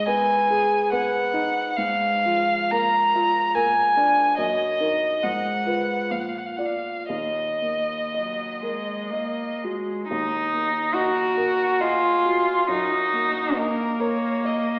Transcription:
Already playing: G#2 G#3
0.06 B3 B4 G#5
0.50 G#4
0.92 B3 B4 F#5
1.34 D#4
1.76 G#2 F5
2.25 F3
2.71 A#3 A#4 A#5
3.15 F4
3.55 A#3 A#4 G#5
3.97 D4
4.37 F#2 A#3 D#5
4.80 D#4 A#4
5.23 G#2 F3 F#5
5.66 F4 B4
6.11 A#2 F3 F5
6.19 F#5
6.29 F5
6.37 F#5
6.46 F5
6.56 F4 D5 F#5
6.66 F5
7.09 D#2 D#5
7.62 A#3
8.12 F#3 D#5
8.60 G#3 A#4
9.10 A#3 D#5
9.63 G#3 F#4
10.08 D#2 D#4
10.54 A#3
10.94 F#4 A#4 D#5
11.37 A#4
11.80 F4 G#4 D#5
12.26 F#4
12.69 F#2 D#4 F#4
13.13 A#3
13.56 A#3 A#4 D#5
14.00 A#4 C#5
14.45 D#5

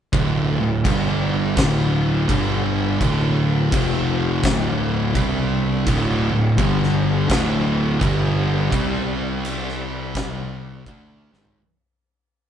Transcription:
0.13 D1 D2 A2 D3 A3 E4, kick, crash
0.58 D1 D2 A2
0.84 G1 G2 D3 G3 D4 A4, kick, crash
1.56 D1 D2 A2 D3 A3 E4, kick, snare, crash
2.29 G1 G2 D3 G3 D4 A4, kick, crash
3.00 D1 D2 A2 D3 A3 E4, kick, crash
3.72 F1 F2 C3 F3 C4 G4, kick, crash
4.43 D1 D2 A2 D3 A3 E4, kick, snare, crash
5.14 C2 C3 G3 C4 D4, kick, crash
5.86 D1 D2 A2 D3 A3 E4, kick, crash
6.31 D1 D2 A2
6.57 G1 G2 D3 G3 D4 A4, kick, crash
6.83 snare
7.28 D1 D2 A2 D3 A3 E4, kick, snare, crash
8.00 G1 G2 D3 G3 D4 A4, kick, crash
8.71 C2 C3 G3 C4 G4 D5, kick, crash
9.45 crash
9.69 snare
10.15 kick, snare, crash
10.86 D2 D3 A3 D4 E5 A5, kick, crash
11.31 G#1 G#2 D#3 G#3, snare
11.45 floor tom

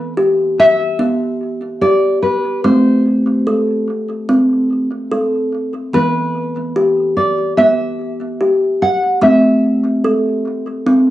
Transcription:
Already playing: E3 B3 B4
0.17 G4
0.60 E5
0.99 B3
1.81 G4 D5
2.23 B4
2.64 A3 C4 C5
3.47 A4
4.29 C4
5.11 A4
5.93 E3 B3 B4
6.76 G4
7.17 D5
7.57 B3 E5
8.41 G4
8.82 F#5
9.22 A3 C4 E5
10.04 A4
10.87 C4

